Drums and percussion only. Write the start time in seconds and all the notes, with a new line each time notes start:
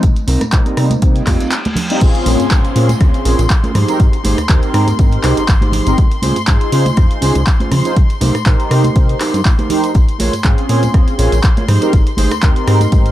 0.03 kick, closed hi-hat, tambourine, high conga
0.16 closed hi-hat, tambourine
0.28 open hi-hat
0.41 cross-stick, closed hi-hat, tambourine, high conga
0.52 kick, clap, closed hi-hat, tambourine
0.66 closed hi-hat, tambourine
0.77 cross-stick, open hi-hat
0.91 closed hi-hat, tambourine, high conga
1.02 kick, closed hi-hat, tambourine
1.16 closed hi-hat, tambourine
1.27 kick, cross-stick, clap, open hi-hat, high conga
1.40 closed hi-hat, tambourine
1.51 clap, closed hi-hat, tambourine
1.65 closed hi-hat, tambourine, high conga
1.76 open hi-hat, low conga
1.90 closed hi-hat, tambourine
2.01 kick, closed hi-hat, crash, tambourine
2.15 closed hi-hat, tambourine
2.26 open hi-hat, high conga
2.40 closed hi-hat, tambourine
2.51 kick, clap, closed hi-hat, tambourine
2.65 closed hi-hat, tambourine
2.76 open hi-hat
2.89 closed hi-hat, tambourine, high conga
3.01 kick, cross-stick, closed hi-hat
3.14 closed hi-hat, tambourine
3.25 open hi-hat
3.39 closed hi-hat, tambourine
3.50 kick, clap, closed hi-hat, tambourine
3.64 closed hi-hat, tambourine, high conga
3.75 cross-stick, open hi-hat, low conga
3.88 closed hi-hat, tambourine
4.00 kick, closed hi-hat, tambourine
4.13 closed hi-hat, tambourine
4.25 open hi-hat, high conga
4.38 cross-stick, closed hi-hat, tambourine
4.49 kick, clap, closed hi-hat, tambourine
4.62 closed hi-hat, tambourine
4.74 cross-stick, open hi-hat
4.87 closed hi-hat, tambourine, high conga
4.99 kick, closed hi-hat, tambourine
5.11 closed hi-hat, tambourine
5.24 cross-stick, clap, open hi-hat
5.37 closed hi-hat, tambourine
5.48 kick, clap, closed hi-hat, tambourine
5.61 closed hi-hat, tambourine, high conga
5.72 open hi-hat, low conga
5.86 closed hi-hat, tambourine
5.98 kick, closed hi-hat, tambourine
6.11 closed hi-hat, tambourine
6.22 open hi-hat, high conga
6.36 closed hi-hat, tambourine
6.47 kick, clap, closed hi-hat, tambourine
6.61 closed hi-hat, tambourine
6.72 open hi-hat
6.86 closed hi-hat, tambourine, high conga
6.96 kick, cross-stick, closed hi-hat, tambourine
7.11 closed hi-hat, tambourine
7.22 open hi-hat
7.35 closed hi-hat, tambourine
7.47 kick, clap, closed hi-hat, tambourine
7.60 closed hi-hat, tambourine, high conga
7.71 cross-stick, open hi-hat, low conga
7.85 closed hi-hat, tambourine
7.96 kick, closed hi-hat, tambourine
8.10 closed hi-hat, tambourine
8.21 open hi-hat, high conga
8.35 cross-stick, closed hi-hat, tambourine
8.45 kick, clap, closed hi-hat, tambourine
8.60 closed hi-hat, tambourine
8.71 cross-stick, open hi-hat
8.84 closed hi-hat, tambourine, high conga
8.95 kick, closed hi-hat, tambourine
9.09 closed hi-hat, tambourine
9.20 cross-stick, clap, open hi-hat
9.34 closed hi-hat, tambourine
9.45 kick, clap, closed hi-hat, tambourine
9.59 closed hi-hat, tambourine, high conga
9.70 open hi-hat, low conga
9.83 closed hi-hat, tambourine
9.94 kick, closed hi-hat, tambourine
10.09 closed hi-hat, tambourine
10.20 open hi-hat, high conga
10.33 closed hi-hat, tambourine
10.44 kick, clap, closed hi-hat
10.58 closed hi-hat, tambourine
10.69 open hi-hat
10.83 closed hi-hat, tambourine, high conga
10.94 kick, cross-stick, closed hi-hat, tambourine
11.08 closed hi-hat, tambourine
11.19 open hi-hat
11.32 closed hi-hat, tambourine
11.43 kick, clap, closed hi-hat, tambourine
11.57 closed hi-hat, tambourine, high conga
11.68 cross-stick, open hi-hat, low conga
11.82 closed hi-hat, tambourine
11.93 kick, closed hi-hat, tambourine
12.06 closed hi-hat, tambourine
12.17 open hi-hat, high conga
12.31 cross-stick, closed hi-hat, tambourine
12.42 kick, clap, closed hi-hat, tambourine
12.56 closed hi-hat, tambourine
12.68 cross-stick, open hi-hat
12.81 closed hi-hat, tambourine, high conga
12.92 kick, closed hi-hat, tambourine
13.05 closed hi-hat, tambourine